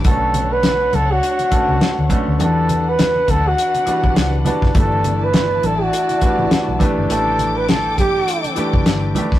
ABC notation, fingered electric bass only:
X:1
M:4/4
L:1/16
Q:"Swing 16ths" 1/4=102
K:Bm
V:1 name="Fingered electric bass" clef=bass
B,,,6 C,,2 z3 C,, z D,, z D,, | E,,6 D,,2 z3 B,,, C,,2 z F,,, | G,,,6 A,,,2 z3 A,,, z B,,, z G,,, | A,,,6 G,,,2 z3 F,,, G,,,2 z A,,, |]